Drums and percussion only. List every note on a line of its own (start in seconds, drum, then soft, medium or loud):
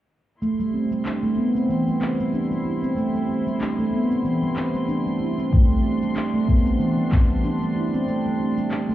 0.42 cabasa medium
0.60 cabasa soft
0.92 cabasa medium
1.06 clap medium
1.06 cabasa soft
1.24 cabasa soft
1.56 cabasa medium
1.70 cabasa soft
1.88 cabasa soft
2.02 clap medium
2.20 cabasa medium
2.34 cabasa soft
2.52 cabasa soft
2.84 cabasa medium
2.98 cabasa medium
3.15 cabasa soft
3.47 cabasa medium
3.61 clap medium
3.61 cabasa medium
3.79 cabasa soft
4.11 cabasa medium
4.25 cabasa medium
4.43 cabasa soft
4.56 clap medium
4.75 cabasa medium
4.89 cabasa soft
5.07 cabasa soft
5.39 cabasa medium
5.53 kick loud
5.53 cabasa medium
5.71 cabasa soft
6.03 cabasa medium
6.16 clap medium
6.16 cabasa medium
6.35 cabasa soft
6.48 kick medium
6.66 cabasa medium
6.80 cabasa medium
6.98 cabasa soft
7.12 kick loud
7.12 clap medium
7.30 cabasa medium
7.44 cabasa medium
7.62 cabasa soft
7.94 cabasa medium
8.08 cabasa medium
8.26 cabasa soft
8.58 cabasa medium
8.71 clap medium
8.71 cabasa medium
8.90 cabasa soft